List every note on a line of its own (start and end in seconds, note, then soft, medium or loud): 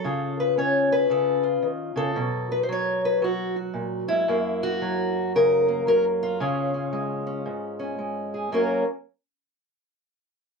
0.00 0.39 A4 medium
0.04 1.08 C#3 medium
0.04 1.42 F4 soft
0.40 0.58 B4 medium
0.58 2.14 C#4 medium
0.58 0.91 C#5 medium
0.92 1.64 B4 loud
1.10 1.62 C#3 medium
1.10 1.44 A4 medium
1.43 2.14 F4 soft
1.62 1.95 D#3 medium
1.96 2.16 C#3 medium
1.96 2.50 A4 medium
2.16 3.73 B2 medium
2.16 2.68 F#3 soft
2.52 2.63 B4 medium
2.63 2.69 C5 medium
2.69 3.21 F#3 medium
2.69 3.04 C#5 loud
3.05 3.24 B4 medium
3.22 4.26 F#3 medium
3.22 3.55 F#4 medium
3.56 4.08 F#4 soft
3.74 4.08 A#2 medium
4.08 4.28 G#2 medium
4.08 5.15 E4 medium
4.28 6.41 F#2 medium
4.28 5.67 A#3 medium
4.63 5.35 F#4 loud
4.82 5.86 F#3 medium
5.35 5.88 C#3 medium
5.35 5.87 A#4 loud
5.68 6.41 A#3 medium
5.87 6.40 F#3 medium
5.87 6.04 A#4 loud
6.23 8.54 F4 medium
6.40 7.47 C#3 medium
6.40 6.73 C#4 medium
6.74 7.25 C#4 soft
6.93 7.97 G#3 medium
7.27 7.78 C#4 soft
7.46 8.50 G#2 medium
7.80 8.50 C#4 soft
7.99 8.50 G#3 soft
8.34 8.51 G#4 soft
8.52 8.82 F#2 medium
8.52 8.83 F#3 medium
8.52 8.83 A#3 medium
8.52 8.83 C#4 medium
8.52 8.84 A#4 medium